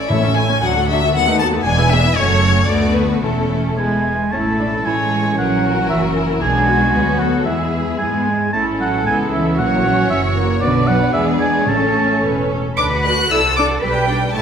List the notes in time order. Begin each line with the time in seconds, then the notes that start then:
0.00 D5
0.09 A1 A2 A3 E4 C#5 E5
0.22 C#4 A4
0.36 A3 E4 C#5 G#5
0.50 C#4 A4
0.62 D2 F#3 D4 F#4 F#5
0.75 A3 F#4 A4
0.89 F#3 D4 F#4 E5
1.01 A3 F#4 A4
1.13 D#2 F#3 B3 A4 F#5
1.27 A3 D#4 B4
1.39 F#3 B3 A4 A5
1.53 A3 D#4 B4
1.65 E1 E2 G#3 D4 G#4 G#5
1.78 B3 E4 B4
1.90 G#3 D4 G#4 E5
2.04 B3 E4 B4
2.16 F#1 F#2 A3 C#4 F#4 C#5
2.68 D2 A3 B3 F#4 D5
2.96 B4
3.22 E1 E2 A3 C#4 E4 A4
3.77 G#3 B3 E4 G#5
4.32 A1 E3 A3 C#4 E4 A4 A5
4.60 D4
4.85 A2 G#3 E4 C#5 G#5
5.12 C#4
5.38 A#1 F#3 F#4 G#4 A#4 F#5
5.65 F#4
5.90 F#1 E3 F#4 E5
6.16 E4
6.41 B1 F#3 G#3 B3 D4 F#4 G#4 G#5
6.67 F#4
6.93 D2 F#3 B3 B4
7.19 F#3 A4 F#5
7.45 E2 E3 G#3 B3 E4 G#4 E5
7.98 G#2 G#3 B3 G#5
8.28 G#3
8.53 A1 E3 A3 C#4 E4 A4 A5
8.81 F#3 F#5
9.07 C#2 G#3 B3 E4 G#5
9.33 E3 E5
9.59 A#1 F#3 A#3 F#4 C#5 F#5
9.86 C#4
10.10 F#1 E3 C#4 F#4 C#5 E5
10.36 A#3
10.61 B1 D3 F#3 B3 D4 F#4 B4 D5
10.87 F#3 F#5
11.13 E2 E3 G#3 D4 G#4 D5 E5
11.40 G#3 G#5
11.67 A1 A2 A3 C#4 A4 C#5 A5
12.24 E1 B4
12.52 A4
12.77 D2 D4 A4 B4 D5 D6
12.91 F#4 F#5
13.03 F#4 A4 D5 F#6
13.17 F#4 F#5
13.30 C2 E4 A4 D5 E6
13.43 F#4 C5
13.56 D4 A4 D5 D6
13.67 F#4 C5
13.81 B1 G3 B4 D5 G5
13.94 G4 B4
14.08 D4 B4 D5
14.21 G4 B4
14.33 A1 A3 C#4 E4 C#5 A5